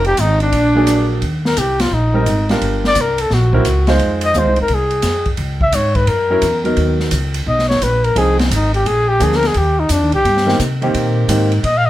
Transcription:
Already playing: upright bass F1
0.04 trumpet G4, alto saxophone G4, ride
0.17 upright bass G#1, trumpet D#4, alto saxophone D#4, hi-hat pedal, ride
0.40 alto saxophone D4, trumpet D4, ride
0.52 upright bass A#1, kick, ride
0.75 grand piano F#3 A#3 D4 G#4
0.87 cross-stick, hi-hat pedal, ride
1.22 upright bass D#2, kick, ride
1.45 trumpet A#4, snare
1.57 upright bass C2, trumpet G4, kick, hi-hat pedal, ride
1.80 trumpet F4, snare, ride
1.91 upright bass A#1, trumpet D#4, kick
2.14 grand piano G3 C4 D#4 A#4
2.26 upright bass G#1, kick, hi-hat pedal, ride
2.49 grand piano G3 D4 F4 A#4, snare, ride
2.61 upright bass G1, kick, ride
2.84 trumpet D5, snare
2.95 upright bass C2, kick, hi-hat pedal, ride
3.01 trumpet A#4
3.18 trumpet A4, ride
3.30 upright bass A#1, trumpet F#4, kick, snare
3.52 grand piano F#3 C4 E4 A#4, kick
3.65 upright bass C#2, kick, hi-hat pedal, ride
3.87 grand piano G#3 D#4 F4 C5, snare, ride
3.99 upright bass F2, kick, ride
4.21 trumpet D#5, ride
4.34 upright bass D#2, grand piano G#3 D#4 F4 C5, kick, hi-hat pedal
4.38 trumpet C5
4.45 upright bass C2
4.56 upright bass G#1, ride
4.61 trumpet A#4
4.68 upright bass C2, kick, ride
4.74 trumpet G#4
4.91 ride
5.02 upright bass F2, kick, snare, hi-hat pedal, ride
5.25 kick, ride
5.37 upright bass C#2, kick, ride
5.61 trumpet E5, kick
5.72 upright bass G#2, trumpet C#5, kick, hi-hat pedal, ride
5.95 trumpet B4, kick, ride
6.07 upright bass F#2, trumpet A#4, kick, ride
6.30 grand piano F#3 C#4 E4 A#4
6.42 upright bass E2, kick, hi-hat pedal, ride
6.64 grand piano F#3 B3 D#4 A#4, ride
6.77 upright bass D#2, kick, ride
7.00 snare
7.11 upright bass C#2, kick, hi-hat pedal, ride
7.34 ride
7.46 upright bass B1, trumpet D#5, kick
7.59 snare
7.68 trumpet C#5, snare
7.81 upright bass A#1, trumpet B4, kick, hi-hat pedal, ride
8.04 trumpet A#4, ride
8.16 upright bass C2, grand piano F3 C4 D#4 G#4, trumpet G#4, kick, ride
8.39 trumpet C4, snare, ride
8.50 upright bass G#1, trumpet D#4, kick, hi-hat pedal, ride
8.74 trumpet G4, ride
8.86 upright bass A#1, trumpet G#4, kick, ride
9.09 trumpet G4
9.19 upright bass D2, grand piano F3 A#3 D4 G#4, trumpet G#4, kick, hi-hat pedal, ride
9.32 trumpet A#4, snare
9.43 snare, ride
9.47 trumpet G#4
9.54 upright bass D#2, trumpet G4, kick, ride
9.79 trumpet D#4
9.89 upright bass F2, trumpet D4, kick, hi-hat pedal, ride
10.01 upright bass D#2
10.12 upright bass C2, trumpet G4, ride
10.25 upright bass G2, kick, ride
10.37 snare
10.46 grand piano D#3 A#3 C4 G4, snare
10.60 upright bass C3, kick, hi-hat pedal, ride
10.82 grand piano D#3 A#3 C4 G4, ride
10.94 upright bass A#2, kick, ride
11.28 upright bass G#2, grand piano D#3 A#3 C4 G4, kick, hi-hat pedal, ride
11.52 ride
11.64 upright bass A#2, trumpet D#5, kick, ride
11.77 trumpet F5
11.86 trumpet D#5

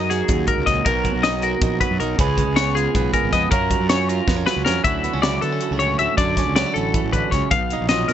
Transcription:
Already playing: fingered electric bass F#2, clean electric guitar F#2 F#3 D#4 A#4 D#5
0.10 clean electric guitar F#4 G#4, snare, closed hi-hat
0.28 fingered electric bass D#2, clean electric guitar F#2, kick, closed hi-hat
0.47 clean electric guitar G#2 A#4, kick, closed hi-hat
0.58 fingered electric bass C#2
0.66 fingered electric bass C#2, clean electric guitar A#2 D#5, kick, snare, closed hi-hat
0.85 fingered electric bass B1, clean electric guitar B2 A#4, kick, closed hi-hat
1.05 clean electric guitar F#3, kick, closed hi-hat
1.15 fingered electric bass B1
1.23 clean electric guitar D#4 D#5, snare, closed hi-hat
1.42 clean electric guitar F#4 A#4, closed hi-hat
1.61 fingered electric bass A#1, clean electric guitar D#4, kick, closed hi-hat
1.81 clean electric guitar F#3 B4, kick, closed hi-hat
1.91 fingered electric bass F#2
2.00 fingered electric bass B1, clean electric guitar D#4 A#4, closed hi-hat
2.18 fingered electric bass C#2, clean electric guitar C#3 G#4 B4, kick, closed hi-hat
2.37 clean electric guitar G#3, kick, closed hi-hat
2.47 fingered electric bass C#2
2.56 clean electric guitar B3 C#5, snare, closed hi-hat
2.75 clean electric guitar F4 G#4, closed hi-hat
2.95 fingered electric bass B1, clean electric guitar B3, kick, closed hi-hat
3.14 clean electric guitar G#3 A#4, kick, closed hi-hat
3.23 fingered electric bass G#1
3.33 fingered electric bass F2, clean electric guitar B3 D#5, kick, snare, closed hi-hat
3.51 clean electric guitar F#2 F#3 C#4 F4 A#4, fingered electric bass F#2, kick, closed hi-hat
3.71 clean electric guitar F#3, kick, closed hi-hat
3.81 fingered electric bass F#2
3.89 clean electric guitar C#4 C#5, snare, closed hi-hat
4.09 clean electric guitar F4 A#4, closed hi-hat
4.28 fingered electric bass F2, clean electric guitar B3, kick, snare
4.36 clean electric guitar C#4
4.46 clean electric guitar F#3 B4, snare
4.56 fingered electric bass C#2
4.65 fingered electric bass F2, clean electric guitar C#4 A#4, snare
4.84 fingered electric bass D2, clean electric guitar D3 F#3 C#4 E4 F#4 E5, kick, closed hi-hat
5.04 clean electric guitar B3, closed hi-hat
5.13 fingered electric bass C#2, clean electric guitar C#4
5.22 clean electric guitar F#3 E4 D5, snare, closed hi-hat
5.41 fingered electric bass D3, clean electric guitar B3 A4, closed hi-hat
5.52 clean electric guitar C#4
5.61 clean electric guitar F#4, closed hi-hat
5.71 fingered electric bass C#2, clean electric guitar G#4
5.79 clean electric guitar A2 C#4 C#5, closed hi-hat
5.99 fingered electric bass D2, clean electric guitar F#4 E5, closed hi-hat
6.17 fingered electric bass F#2, clean electric guitar D3 D5, kick, closed hi-hat
6.37 clean electric guitar C#4, kick, snare, closed hi-hat
6.47 fingered electric bass C#2
6.56 clean electric guitar F#3 C#4 D5, snare, closed hi-hat
6.66 clean electric guitar E4
6.74 fingered electric bass A1, clean electric guitar C#4 A4, closed hi-hat
6.94 clean electric guitar E3, kick, closed hi-hat
7.04 fingered electric bass A1
7.13 clean electric guitar D3 B4, kick, closed hi-hat
7.31 fingered electric bass C#2, clean electric guitar C#3 C#5, kick, snare, closed hi-hat
7.51 fingered electric bass B1, clean electric guitar B2 F5, kick, closed hi-hat
7.70 clean electric guitar D#4, closed hi-hat
7.81 fingered electric bass A#1
7.89 clean electric guitar F#3 F4 D#5, snare, closed hi-hat
8.08 fingered electric bass B2, clean electric guitar D#4 A#4, closed hi-hat

